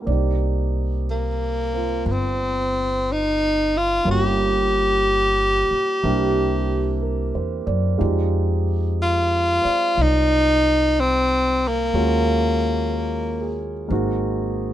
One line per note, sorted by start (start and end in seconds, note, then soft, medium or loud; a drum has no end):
0.00 4.03 A#3 soft
0.00 0.10 G4 soft
0.05 2.03 C2 medium
0.05 1.72 C4 soft
0.05 4.06 D5 soft
0.10 4.07 D#4 soft
0.10 4.07 G4 soft
1.11 2.06 A#3 medium
1.73 4.06 C4 soft
1.73 4.07 F4 soft
2.06 4.02 G1 medium
2.06 2.13 A#3 medium
2.12 3.13 C4 medium
3.12 3.79 D#4 medium
3.77 4.08 F4 medium
4.04 5.66 G1 medium
4.04 6.02 G3 soft
4.04 6.02 A#3 soft
4.04 6.03 C#4 soft
4.04 6.04 F4 soft
4.09 6.04 G4 medium
4.09 7.00 G4 medium
5.71 muted upright bass stroke soft
6.03 7.31 C2 medium
6.03 8.00 A#3 medium
6.03 7.97 C4 soft
6.03 8.01 D4 medium
6.03 8.00 E4 soft
6.03 7.98 G4 medium
7.01 7.63 A#4 soft
7.35 7.65 E2 medium
7.35 7.85 C5 soft
7.67 7.97 F#2 medium
7.67 8.18 D5 soft
7.98 9.60 F2 medium
7.98 11.92 G#3 medium
7.98 9.60 C4 soft
7.98 11.92 D#4 soft
7.98 9.63 F4 soft
7.98 11.92 G4 medium
9.02 10.03 F4 medium
9.61 11.92 C4 soft
9.61 11.93 F4 soft
9.61 11.93 D5 soft
9.61 muted upright bass stroke soft
9.97 11.89 C2 medium
10.02 11.02 D#4 medium
11.00 11.69 C4 medium
11.67 13.61 A#3 medium
11.94 13.86 D#2 medium
11.94 13.86 G#3 medium
11.94 13.87 A#3 soft
11.94 13.91 C#4 soft
11.94 13.91 F4 soft
11.94 13.91 F#4 medium
12.93 13.71 A#4 soft
13.41 14.11 G#4 soft
13.88 14.73 G#1 medium
13.88 14.73 G#3 medium
13.88 14.73 A#3 soft
13.88 14.73 C4 soft
13.88 14.73 D#4 soft
13.93 14.73 F#4 medium